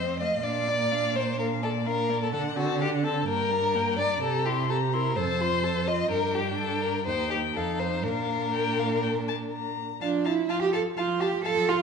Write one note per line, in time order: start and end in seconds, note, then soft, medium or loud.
0.00 0.41 F2 soft
0.00 0.22 C4 soft
0.00 0.18 C5 medium
0.00 0.23 D#5 soft
0.20 0.43 A3 soft
0.20 0.45 D#5 medium
0.20 0.44 F5 soft
0.43 2.34 A#2 soft
0.43 0.69 D4 soft
0.43 1.17 D5 medium
0.43 0.70 F5 soft
0.68 0.94 A#3 soft
0.68 0.93 D5 soft
0.92 1.16 D4 soft
0.92 1.17 F5 soft
1.15 1.38 A#3 soft
1.15 1.38 C5 medium
1.15 1.39 D5 soft
1.38 1.63 D4 soft
1.38 1.47 A#4 medium
1.38 1.64 F5 soft
1.62 1.87 A#3 soft
1.62 1.71 A4 medium
1.62 1.88 D5 medium
1.86 2.11 D4 medium
1.86 2.21 A#4 medium
1.86 2.11 F5 soft
2.09 2.32 A#3 soft
2.09 2.33 D5 soft
2.23 2.33 A4 medium
2.33 3.27 D3 medium
2.33 2.58 D4 medium
2.33 2.41 A4 medium
2.33 2.58 F#5 medium
2.56 2.82 C4 medium
2.56 2.80 F#4 medium
2.56 2.82 A5 medium
2.80 3.05 D4 soft
2.80 2.89 G4 medium
2.80 3.06 F#5 soft
3.03 3.26 C4 soft
3.03 3.27 A4 medium
3.03 3.28 A5 soft
3.27 4.20 G2 medium
3.27 3.52 A#3 soft
3.27 3.98 A#4 medium
3.27 3.53 G5 medium
3.50 3.77 D4 soft
3.50 3.77 A#5 soft
3.75 3.99 A#3 medium
3.75 4.01 G5 soft
3.98 4.22 D4 soft
3.98 4.22 D5 medium
3.98 4.22 A#5 medium
4.22 5.18 C3 medium
4.22 4.47 G4 medium
4.22 4.47 A4 medium
4.22 4.47 A#5 medium
4.45 4.71 E4 soft
4.45 4.68 G4 medium
4.45 4.71 C6 soft
4.69 4.95 G4 soft
4.69 4.77 A4 medium
4.69 4.95 A#5 medium
4.93 5.16 E4 soft
4.93 5.18 A#4 medium
4.93 5.16 C6 soft
5.16 6.11 F2 medium
5.16 5.42 A4 medium
5.16 5.89 C5 medium
5.16 5.42 A5 medium
5.40 5.66 F4 soft
5.40 5.65 C6 medium
5.64 5.89 A4 medium
5.64 5.90 A5 medium
5.88 6.11 F4 medium
5.88 6.10 D#5 medium
5.88 6.11 C6 soft
6.11 7.08 G2 soft
6.11 7.03 D4 medium
6.11 6.36 A#4 medium
6.11 7.03 G5 medium
6.35 6.57 G4 medium
6.58 6.83 A4 medium
6.82 7.06 A#4 medium
7.06 7.57 D#2 soft
7.06 7.54 D#4 soft
7.06 7.30 C5 medium
7.06 7.58 G5 medium
7.31 7.39 G4 medium
7.54 8.07 F2 medium
7.54 8.06 D#4 soft
7.54 7.81 A4 medium
7.54 8.04 F5 medium
7.80 8.05 C5 medium
8.04 9.82 A#2 soft
8.04 9.81 D4 soft
8.04 9.77 A#4 medium
8.04 8.48 F5 soft
8.54 8.81 G5 medium
8.79 9.02 F5 soft
9.03 9.11 G5 medium
9.28 9.36 A5 medium
9.52 10.00 A#5 medium
10.01 10.44 F3 medium
10.01 10.27 D4 medium
10.01 10.09 F5 soft
10.01 10.09 A5 medium
10.25 10.51 E4 medium
10.25 10.33 F5 soft
10.25 10.34 A5 soft
10.49 10.92 F3 soft
10.49 10.61 F4 medium
10.49 10.57 F5 soft
10.49 10.57 A5 soft
10.61 10.72 G4 medium
10.73 10.81 A4 medium
10.73 10.81 F5 soft
10.73 10.81 A5 soft
10.97 11.40 F3 medium
10.97 11.22 F4 medium
10.97 11.05 F5 soft
10.97 11.06 A5 medium
11.20 11.44 G4 medium
11.20 11.29 F5 soft
11.20 11.29 A5 medium
11.45 11.82 F3 medium
11.45 11.70 A4 medium
11.45 11.53 F5 medium
11.45 11.53 A5 soft
11.69 11.82 F4 medium
11.69 11.77 F5 soft
11.69 11.77 A5 soft